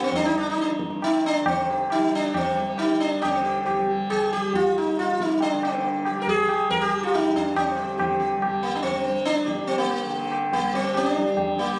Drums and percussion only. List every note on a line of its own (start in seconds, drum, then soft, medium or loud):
0.12 tabla tin medium
0.12 tabla ge medium
0.57 tabla te medium
0.69 tabla te medium
0.79 tabla ke medium
0.90 tabla te medium
1.02 tabla na medium
1.25 tabla te medium
1.46 tabla na medium
1.46 tabla ge medium
1.90 tabla na medium
2.11 tabla te medium
2.34 tabla na medium
2.34 tabla ge medium
2.78 tabla na medium
3.00 tabla te medium
3.22 tabla na loud
3.22 tabla ge medium
3.66 tabla na medium
3.66 tabla ge medium
4.10 tabla na medium
4.10 tabla ge medium
4.53 tabla tin medium
4.53 tabla ge medium
4.97 tabla te medium
5.09 tabla te medium
5.20 tabla ke medium
5.30 tabla te medium
5.40 tabla tin medium
5.63 tabla na medium
5.84 tabla tin medium
6.05 tabla na medium
6.27 tabla tin medium
6.27 tabla ge medium
6.49 tabla na medium
6.70 tabla tin medium
6.70 tabla ge medium
7.14 tabla na medium
7.14 tabla ge medium
7.36 tabla ge medium
7.56 tabla na medium
7.56 tabla ge medium
7.99 tabla na medium
7.99 tabla ge medium
8.42 tabla na medium
8.42 tabla ge medium
8.84 tabla tin medium
8.84 tabla ge medium
9.27 tabla te medium
9.38 tabla te medium
9.48 tabla ke medium
9.59 tabla te medium
9.69 tabla tin medium
9.90 tabla na medium
10.11 tabla tin medium
10.32 tabla na medium
10.53 tabla tin medium
10.53 tabla ge medium
10.94 tabla na medium
10.94 tabla ge medium
11.16 tabla te medium
11.37 tabla tin medium
11.37 tabla ge medium